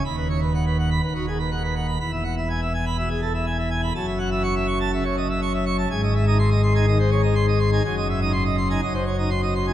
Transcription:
<<
  \new Staff \with { instrumentName = "Pipe organ" } { \time 4/4 \key gis \phrygian \tempo 4 = 123 b''16 b'16 cis''16 b'16 fis''16 b'16 fis''16 b''16 b'16 fis'16 gis'16 b'16 fis''16 b'16 fis''16 b''16 | b''16 e''16 fis''16 e''16 gis''16 e''16 gis''16 b''16 e''16 gis'16 a'16 e''16 gis''16 e''16 gis''16 b''16 | a''16 e''16 fis''16 e''16 cis'''16 e''16 cis'''16 a''16 e''16 cis''16 dis''16 e''16 cis'''16 e''16 cis'''16 a''16 | gis''16 dis''16 e''16 dis''16 bis''16 dis''16 bis''16 gis''16 dis''16 bis'16 cis''16 dis''16 bis''16 dis''16 bis''16 gis''16 |
gis''16 dis''16 e''16 dis''16 bis''16 dis''16 bis''16 gis''16 dis''16 bis'16 cis''16 dis''16 bis''16 dis''16 bis''16 gis''16 | }
  \new Staff \with { instrumentName = "Pipe organ" } { \clef bass \time 4/4 \key gis \phrygian << { dis,2 dis,16 dis16 r4. | e,2 b,16 r4. r16 | fis,2 cis16 r4. r16 | gis,8. dis'16 r8. dis'16 dis16 r8 dis'16 r8. dis'16 |
fis,8. dis'16 r8. dis'16 fis,8. dis'16 r8. dis'16 | } \\ { dis,,2 dis,,2 | e,,1 | fis,,1 | gis,,1 |
fis,,2 fis,,2 | } >> }
>>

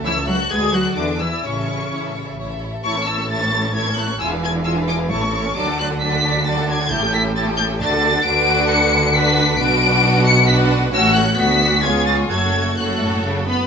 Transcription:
<<
  \new Staff \with { instrumentName = "Violin section" } { \time 3/4 \key a \major \tempo 4 = 132 e'''8 fis'''8 gis'''8 fis'''8 d'''8 e'''8 | cis'''2 r4 | cis'''8 e'''8 a'''4 gis'''8 fis'''8 | e'''8 gis'''8 e'''8 d'''8 cis'''4 |
d'''8 fis'''8 b'''4 a'''8 gis'''8 | g'''8 b'''8 a'''8 g'''8 a'''4 | \key b \dorian d''''4 cis''''4 b'''4 | d''''4. cis''''8 b'''8 r8 |
e'''8 fis'''8 b'''4 gis'''8 a'''8 | gis'''4 fis'''4 r8 b''8 | }
  \new Staff \with { instrumentName = "Violin section" } { \time 3/4 \key a \major <cis'' e''>16 <a' cis''>16 <cis'' e''>16 <a' cis''>16 <fis' b'>16 <a' d''>16 <fis' b'>16 <a' d''>16 <e' b'>16 <gis' d''>16 <e' b'>16 <gis' d''>16 | <e' cis''>16 <a' e''>16 <e' cis''>16 <a' e''>16 <e' cis''>16 <a' e''>16 <e' cis''>16 <a' e''>16 <e' cis''>16 <a' e''>16 <e' cis''>16 <a' e''>16 | <cis'' a''>16 <a' cis'''>16 <cis'' a''>16 <a' cis'''>16 <cis'' a''>16 <a' cis'''>16 <cis'' a''>16 <a' cis'''>16 <cis'' a''>16 <a' cis'''>16 <cis'' a''>16 <a' cis'''>16 | <gis' gis''>16 <b' f''>16 <gis' gis''>16 <b' f''>16 <gis' gis''>16 <b' f''>16 <gis' gis''>16 <b' f''>16 <cis'' a''>16 <a' cis'''>16 <cis'' a''>16 <a' cis'''>16 |
<d'' a''>16 <a' fis''>16 <d'' a''>16 <a' fis''>16 <d'' a''>16 <a' fis''>16 <d'' a''>16 <a' fis''>16 <d'' a''>16 <a' fis''>16 <d'' a''>16 <a' fis''>16 | <g' a''>16 <a' g''>16 <g' a''>16 <a' g''>16 <g' a''>16 <a' g''>16 <g' a''>16 <a' g''>16 <d'' a''>16 <a' fis''>16 <d'' a''>16 <a' fis''>16 | \key b \dorian <b' fis''>2 <b' fis''>4 | <b' fis''>2 <b' fis''>4 |
<fis' fis''>4 <fis' fis''>4 <gis' cis''>4 | <a' cis''>4 <a' cis''>4. b'8 | }
  \new Staff \with { instrumentName = "Viola section" } { \time 3/4 \key a \major e'8 fis'8 gis'8 fis'8 d'8 e'8 | cis'2 r4 | <a e'>16 cis'16 <a e'>16 cis'16 <a e'>16 cis'16 <a e'>16 cis'16 <a e'>16 cis'16 <a e'>16 cis'16 | <e' f'>16 <d' e'>16 <e' f'>16 <d' e'>16 <e' f'>16 <d' e'>16 <e' f'>16 <d' e'>16 <a e'>16 cis'16 <a e'>16 cis'16 |
<fis fis'>16 <a d'>16 <fis fis'>16 <a d'>16 <fis fis'>16 <a d'>16 <fis fis'>16 <a d'>16 <fis fis'>16 <a d'>16 <fis fis'>16 <a d'>16 | <a e'>16 <cis' g'>16 <a e'>16 <cis' g'>16 <a e'>16 <cis' g'>16 <a e'>16 <cis' g'>16 <a fis'>16 <d' a'>16 <a fis'>16 <d' a'>16 | \key b \dorian <d' fis'>2 <d' fis'>4 | <d' fis'>2 <d' fis'>4 |
<cis' fis'>4 <b fis'>4 <b eis'>4 | <a fis'>4 <a fis'>4. r8 | }
  \new Staff \with { instrumentName = "Cello section" } { \clef bass \time 3/4 \key a \major e8 fis8 gis8 fis8 d8 e8 | cis2 r4 | a,2. | e,2 a,4 |
d2. | a,2 d4 | \key b \dorian d2. | b,2. |
a,4 d,4 cis,4 | fis,4 fis,8 a,8 cis8 b8 | }
  \new Staff \with { instrumentName = "Double bass section" } { \clef bass \time 3/4 \key a \major cis,4 d,4 e,4 | a,,4 a,,4 a,,4 | a,,2. | e,,2 a,,4 |
d,2. | a,,2 d,4 | \key b \dorian d,2. | b,,2. |
a,,4 d,4 cis,4 | fis,,2~ fis,,8 r8 | }
>>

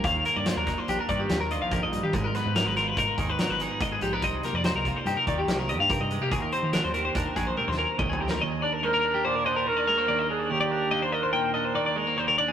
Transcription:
<<
  \new Staff \with { instrumentName = "Clean electric guitar" } { \time 5/4 \key ees \major \tempo 4 = 144 f''8 bes'16 d''16 c''16 bes'8 c''16 g'16 bes'16 d''16 g'8 bes'16 ees''16 f''16 bes'16 ees''8 g'16 | aes'16 bes'16 ces''8 bes'16 ces''16 bes'16 ces''16 bes'8 aes'16 ces''16 bes'16 ces''16 aes'8 ees''16 aes'16 g'16 bes'16 | ees''8 bes'16 d''16 c''16 bes'8 c''16 g'16 bes'16 d''16 g'8 bes'16 ees''16 f''16 bes'16 ees''8 g'16 | aes'16 bes'16 c''8 bes'16 c''16 bes'16 c''16 bes'8 aes'16 c''16 bes'16 c''16 bes'8 ees''16 aes'16 g'16 bes'16 |
ees''8 d''16 bes'16 c''16 bes'8 g'16 c''16 bes'16 ees''16 bes'8 d''16 bes'16 c''16 d''16 ees''8 d''16 | bes'16 d''16 bes'8 ees''16 c''16 ees''16 c''16 g''8 ees''16 c''16 d''16 d''16 bes'8 c''16 bes'16 d''16 aes'16 | }
  \new Staff \with { instrumentName = "Trumpet" } { \time 5/4 \key ees \major r1 r4 | r1 r4 | r1 r4 | r1 r4 |
r4 bes'4 d''8 c''8 bes'4. aes'8 | g'4~ \tuplet 3/2 { g'8 c''16 bes'8.~ } bes'4. r4. | }
  \new Staff \with { instrumentName = "Clean electric guitar" } { \time 5/4 \key ees \major << { r8 bes8 d'8 ees'16 f'16 d'4 bes8 f'4. | r8 ces'8 ees'8 f'8 ees'4 ces'8 ees'4 aes16 ces'16 | r8 bes8 ees'8 f'8 ees'4 bes8 g'4 aes16 bes16 | r8 c'8 d'8 g'8 d'4 c'8 bes'4 c'8 |
r8 d'8 aes16 bes16 d'4 d'4 aes16 bes8. d'8 | r8 d'8 bes8 d'4 d'4 aes16 bes8. d'8 | } \\ { ees,2~ ees,8 ees4. f,8 g,8 | aes,2~ aes,8 ees4. aes,4 | c2~ c8 ees4. c4 | ees,2~ ees,8 ees4. ees,4 |
ees,2 bes,4 ees4 ees,4 | ees,2 bes,4 ees4 ees,4 | } >> }
  \new Staff \with { instrumentName = "Fingered electric bass" } { \clef bass \time 5/4 \key ees \major ees,8 r16 g,8 ees,8 r16 bes,,16 r16 g,8 ees,8. bes,,8 bes,,8 ees16 | aes,,8 r16 aes,8 aes,,8. aes,,16 r16 ees,8 r16 aes,,8 r16 aes,8 bes,,8 | c,8 r16 f,8 c,8 r16 g,16 r16 ees,8 c,8. g,8 g,8 c16 | ees,8 r16 ees8 ees,8. ees,16 r16 bes,,8 r16 ees,8 r16 c,8 d,8 |
r1 r4 | r1 r4 | }
  \new DrumStaff \with { instrumentName = "Drums" } \drummode { \time 5/4 <hh bd>8 hh8 <hh sn>8 <hh bd sn>8 hh8 <hh bd>8 <hh sn>8 hh8 <hh bd>8 hh8 | <hh bd>8 <hh sn>8 <hh sn>8 <hh sn>8 <hh bd>8 <hh bd>8 <hh sn>8 <hh sn>8 <hh bd>8 hh8 | <hh bd>8 <hh sn>8 <hh sn>8 <hh bd>8 hh8 <hh bd>8 <hh sn>8 hh8 <hh bd>8 hh8 | <hh bd>8 hh8 <hh sn>8 hh8 <hh bd>8 <hh bd sn>8 \tuplet 3/2 { tommh8 sn8 r8 <bd toml>8 tomfh8 sn8 } |
r4 r4 r4 r4 r4 | r4 r4 r4 r4 r4 | }
>>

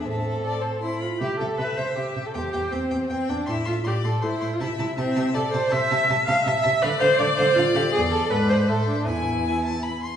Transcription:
<<
  \new Staff \with { instrumentName = "Violin" } { \time 3/4 \key a \minor \tempo 4 = 160 c'2~ c'8 r8 | \key c \major e''8 e''8 e''8 e''8 e''8 e''8 | g''8 g''8 g''8 g''8 g''8 g''8 | c'''8 c'''8 c'''8 c'''8 c'''8 c'''8 |
a''8 a''8 a''8 a''8 a''8 a''8 | \key a \minor a''8 a''8 a''8 a''8 a''8 a''8 | f''8 f''8 f''8 f''8 f''8 f''8 | d''4 d''4 e''4 |
gis''4 gis''8 a''8 b''8 c'''8 | }
  \new Staff \with { instrumentName = "Violin" } { \time 3/4 \key a \minor e''4 d''8 c''8 c'''8 b''8 | \key c \major r4 e''2 | c''2 g''4 | e''4 d''4 c''4 |
e''4 e''4 d''4 | \key a \minor c''4 e''2 | d''2.~ | d''4 b'4 c''4 |
gis''2~ gis''8 r8 | }
  \new Staff \with { instrumentName = "Viola" } { \time 3/4 \key a \minor a'2 e'8 f'8 | \key c \major g'8 a'8 b'8 c''8 g'8. a'16 | g'8 g'8 c'4 c'8 d'8 | e'8 f'8 g'8 a'8 e'8. f'16 |
e'8 e'8 c'4 a'8 c''8 | \key a \minor e''4. f''8 e''4 | b'8 c''8 d''8 c''8 f'8 g'8 | gis'8 a'8 b'8 c''8 a'8 d'8 |
e'2 r4 | }
  \new Staff \with { instrumentName = "Cello" } { \clef bass \time 3/4 \key a \minor a,2~ a,8 r8 | \key c \major c8 c8 c8 c8 c8 c8 | e,8 e,8 e,8 e,8 e,8 e,8 | a,8 a,8 a,8 a,8 a,8 a,8 |
c8 c8 c8 c8 c8 c8 | \key a \minor c8 c8 c8 c8 c8 c8 | d8 d8 d8 d8 d8 d8 | e,4 gis,4 a,4 |
e,2~ e,8 r8 | }
>>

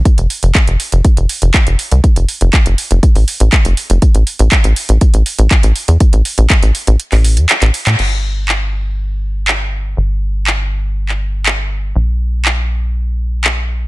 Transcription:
<<
  \new Staff \with { instrumentName = "Analog synth bass" } { \clef bass \time 4/4 \key a \phrygian \tempo 4 = 121 r16 f,,16 r16 f,,16 r16 f,,16 r16 f,,16 r16 f,,16 r16 f,,16 r16 f,,16 r16 c,16 | r16 f,,16 r16 f,,16 r16 f,,16 r16 f,,16 r16 a,,16 r16 a,,16 r16 f,,16 r16 f,,16 | r16 a,,16 r16 a,,16 r16 a,,16 r16 a,,16 r16 a,,16 r16 a,,16 r16 a,,16 r16 e,16 | r16 a,,16 r16 a,,16 r16 a,,16 r16 a,,16 r16 a,,8 e,16 r16 a,,16 r16 a,16 |
g,,1 | g,,1 | bes,,1 | }
  \new DrumStaff \with { instrumentName = "Drums" } \drummode { \time 4/4 <hh bd>16 hh16 hho16 hh16 <hc hh bd>16 hh16 hho16 hh16 <hh bd>16 hh16 hho16 hh16 <hc hh bd>16 hh16 hho16 hh16 | <hh bd>16 hh16 hho16 hh16 <hc hh bd>16 hh16 hho16 hh16 <hh bd>16 hho16 hho16 hh16 <hc hh bd>16 hh16 hho16 hh16 | <hh bd>16 hh16 hho16 hh16 <hc hh bd>16 hh16 hho16 hh16 <hh bd>16 hh16 hho16 hh16 <hc hh bd>16 hh16 hho16 hh16 | <hh bd>16 hh16 hho16 hh16 <hc hh bd>16 hh16 hho16 hh16 hh16 <hc hho>16 hho16 hh16 <hc hh>16 <hc hh>16 hho16 <hc hh>16 |
cymc4 hc4 r4 hc4 | r4 hc4 r16 hc8. hc4 | r4 hc4 r4 hc4 | }
>>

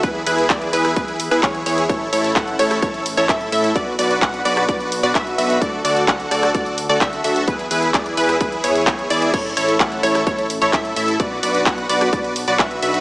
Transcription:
<<
  \new Staff \with { instrumentName = "Synth pluck" } { \time 4/4 \key a \major \tempo 4 = 129 b'8 b'8 d''8 b'8 b'8 r16 b'16 cis''8 cis''8 | cis''8 cis''8 fis''8 cis''8 cis''8 r16 cis''16 e''8 e''8 | d''8 d''8 fis''8 d''8 d''8 r16 d''16 e''8 e''8 | d''8 d''8 fis''8 d''8 d''8 r16 d''16 e''8 e''8 |
b'8 b'8 d''8 b'8 b'8 cis''8 cis''8 d''8 | cis''8 cis''8 fis''8 cis''8 cis''8 r16 cis''16 e''8 e''8 | d''8 d''8 fis''8 d''8 d''8 r16 d''16 e''8 e''8 | }
  \new Staff \with { instrumentName = "Supersaw synth" } { \time 4/4 \key a \major <e' gis' b'>8 <e' gis' b'>8 d''8 <e' gis' b'>8 <e' b'>8 r16 <e' gis' b'>16 <e' gis'>8 <e' gis' cis''>8 | <e' a' cis''>8 <e' a' cis''>8 r8 <e' a' cis''>8 <e' a' cis''>8 r16 <e' a' cis''>16 <e' a'>8 <e' a' e''>8 | <fis' b' d''>8 <fis' b' d''>8 <fis' b' fis''>8 <fis' b' d''>8 <fis' d''>8 r16 <fis' b' d''>16 <fis' b' e''>8 <fis' b' e''>8 | r8 <fis' a' d''>8 r8 <fis' a' d''>8 <fis' a' d''>8 r16 <fis' a' d''>16 <fis' a' e''>8 <fis' a' e''>8 |
<e' gis' b'>8 <e' gis' b'>8 <gis' d''>8 <e' gis' b'>8 <e' gis' b'>8 <e' gis' cis''>8 <e' gis' cis''>8 <e' gis' d''>8 | <e' a' cis''>8 <e' a' cis''>8 r8 <e' a' cis''>8 <e' a' cis''>8 r16 <e' a' cis''>16 <e' a'>8 <e' a' e''>8 | <fis' b' d''>8 <fis' b' d''>8 r8 <fis' b' d''>8 <fis' b'>8 r16 <fis' b' d''>16 <fis' b' e''>8 <fis' b' e''>8 | }
  \new Staff \with { instrumentName = "Analog synth pad" } { \time 4/4 \key a \major << { <e e' b'>1 | a1 | <b fis'>1 | <d a'>1 |
<e e' b'>1 | <a e'>1 | <b fis'>1 | } \\ { gis'1 | cis'1 | d'1~ | d'1 |
gis'1 | cis'1 | d'1 | } >> }
  \new Staff \with { instrumentName = "Analog synth bass" } { \clef bass \time 4/4 \key a \major e,8 e,8 r8 e,8 e,8. e,16 e,8 e,8 | a,,8 a,,8 a,,8 a,,8 a,,8. a,,16 a,,8 a,8 | b,,8 b,,8 b,,8 b,,8 b,,8. b,,16 b,,8 b,,8 | r8 d,8 d,8 d,8 d,8. d,16 d,8 d,8 |
e,8 e,8 e,8 e,8 e,8 e,8 e,8 e,8 | a,,8 a,,8 a,,8 a,,8 a,,8. a,,16 a,8 a,,8 | b,,8 b,,8 b,,8 b,,8 b,,8. b,,16 b,,8 b,,8 | }
  \new DrumStaff \with { instrumentName = "Drums" } \drummode { \time 4/4 <hh bd>8 hho16 hh16 <hc hh bd>16 hh16 hho16 <hh ss>16 <hh bd>16 hh16 hho16 hh16 <hc hh bd>16 hh16 hho16 hh16 | <hh bd>8 hho16 hh16 <hc hh bd>16 hh16 <hho ss>16 <hh ss>16 <hh bd>16 hh16 hho16 hh16 <hc hh bd>16 hh16 hho16 hh16 | <hh bd>8 hho16 hh16 <hc hh bd>16 hh16 hho16 <hh ss>16 <hh bd>16 hh16 hho16 hh16 <hc hh bd>16 hh16 hho16 hh16 | <hh bd>8 hho16 hh16 <hc hh bd>16 hh16 <hho ss>16 <hh ss>16 <hh bd>16 hh16 hho16 hh16 <hc hh bd>16 hh16 hho16 hh16 |
<hh bd>16 hh16 hho16 hh16 <hc hh bd>16 hh16 hho16 <hh ss>16 <hh bd>16 hh16 hho16 hh16 <hc hh bd>16 hh16 hho16 hh16 | <cymc hh bd>8 hho16 hh16 <hc hh bd>16 hh16 <hho ss>16 <hh ss>16 <hh bd>16 hh16 hho16 hh16 <hc hh bd>16 hh16 hho16 hh16 | <hh bd>8 hho16 hh16 <hc hh bd>16 hh16 hho16 <hh ss>16 <hh bd>16 hh16 hho16 hh16 <hc hh bd>16 hh16 hho16 hh16 | }
>>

